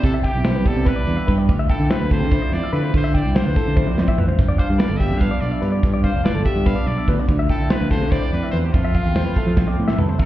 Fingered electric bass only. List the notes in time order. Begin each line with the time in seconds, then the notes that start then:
0.04 C3
0.35 B1
0.56 C2
0.76 C3
1.07 E2
1.28 G2
1.49 D2
1.80 D3
2.00 D2
2.21 D3
2.52 F2
2.73 D3
2.94 D3
3.26 C2
3.46 D2
3.68 D3
3.98 F2
4.19 A1
4.39 G1
4.70 G2
4.89 G1
5.11 G2
5.42 B1
5.62 G2
5.83 G2
6.14 F1
6.35 G1
6.56 G2
6.87 B1
7.08 D2
7.29 D2
7.60 D3
7.81 D2
8.01 D3
8.33 F2
8.53 E2
8.74 F2
9.06 E2
9.26 F2
9.47 F3
9.79 A2
9.98 C2
10.20 F2